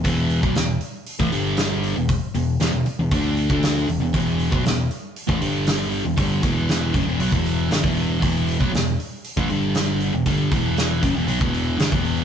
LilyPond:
<<
  \new Staff \with { instrumentName = "Distorted electric guitar" } { \clef bass \time 4/4 \key e \minor \tempo 4 = 118 <e, b, e>8. <b, fis>16 <e, b,>8 r8. <a, e>16 <g, d g>4~ <g, d g>16 <e, b,>16~ | <e, b,>16 r16 <e, b,>8 <e, b,>16 <e, b,>16 r16 <e, b,>16 <d a d'>8. <d a d'>8. <e, b,>16 <e, b,>16 | <e, b, e>8. <b, fis>16 <e, b,>8 r8. <a, e>16 <g, d g>4~ <g, d g>16 <e, b,>16 | <g, d g>8 <e, b, e>4 <fis, cis>16 <e, b,>16 <b, fis>16 <e, b, e>8. <g, d>16 <e, b, e>8. |
<e, b, e>8. <b, fis>16 <e, b,>8 r8. <a, e>16 <g, d g>4~ <g, d g>16 <e, b,>16 | <g, d g>8 <e, b, e>4 <fis, cis>16 <e, b,>16 <b, fis>16 <e, b, e>8. <g, d>16 <e, b, e>8. | }
  \new Staff \with { instrumentName = "Picked electric bass" } { \clef bass \time 4/4 \key e \minor e,,8. b,,16 e,,8 r8. a,,16 g,,4~ g,,16 e,,16~ | e,,16 r16 e,,8 e,,16 e,,16 r16 e,,16 d,8. d,8. e,,16 e,,16 | e,,8. b,,16 e,,8 r8. a,,16 g,,4~ g,,16 e,,16 | g,,8 e,,4 fis,,16 e,,16 b,,16 e,,8. g,,16 e,,8. |
e,,8. b,,16 e,,8 r8. a,,16 g,,4~ g,,16 e,,16 | g,,8 e,,4 fis,,16 e,,16 b,,16 e,,8. g,,16 e,,8. | }
  \new DrumStaff \with { instrumentName = "Drums" } \drummode { \time 4/4 <hho bd>8 hho16 bd16 <hho sn>8 hho8 hho16 bd16 hho8 <hho sn>8 hho8 | <hho bd>8 hho8 <hho sn>8 hho8 <hho bd>8 hho16 bd16 <hho sn>8 hho8 | <hho bd>8 hho16 bd16 <hho sn>8 hho8 hho16 bd16 hho8 <hho sn>8 hho8 | <hho bd>8 <hho bd>8 <hho sn>8 <hho bd>8 hho16 bd16 hho8 <hho sn>16 bd16 hho8 |
<hho bd>8 hho16 bd16 <hho sn>8 hho8 hho16 bd16 hho8 <hho sn>8 hho8 | <hho bd>8 <hho bd>8 <hho sn>8 <hho bd>8 hho16 bd16 hho8 <hho sn>16 bd16 hho8 | }
>>